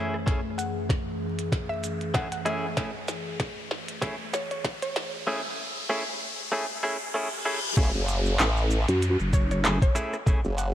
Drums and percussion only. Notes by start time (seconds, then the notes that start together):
0.14 cross-stick
0.27 kick, snare, closed hi-hat
0.59 closed hi-hat, shaker
0.89 kick, snare, closed hi-hat
1.39 closed hi-hat
1.52 kick, snare, closed hi-hat
1.84 closed hi-hat, shaker
2.01 closed hi-hat
2.14 kick, snare, closed hi-hat
2.32 closed hi-hat
2.46 cross-stick, closed hi-hat
2.77 kick, snare, closed hi-hat
3.08 snare, closed hi-hat, shaker
3.40 kick, snare, closed hi-hat
3.71 snare
3.88 closed hi-hat
4.02 kick, snare, closed hi-hat
4.34 snare, closed hi-hat, shaker
4.51 closed hi-hat
4.64 kick, snare, closed hi-hat
4.82 closed hi-hat
4.96 snare, closed hi-hat
7.77 kick, closed hi-hat, crash, shaker
7.95 shaker
8.09 closed hi-hat, shaker
8.26 shaker
8.40 clap, closed hi-hat, shaker
8.57 shaker
8.71 shaker
8.88 closed hi-hat, shaker
9.02 closed hi-hat, shaker
9.20 shaker
9.33 kick, closed hi-hat, shaker
9.51 closed hi-hat, shaker
9.65 clap, closed hi-hat, shaker
9.82 kick, closed hi-hat, shaker
9.96 closed hi-hat, shaker
10.14 cross-stick, shaker
10.27 kick, closed hi-hat, shaker
10.45 shaker
10.58 closed hi-hat, shaker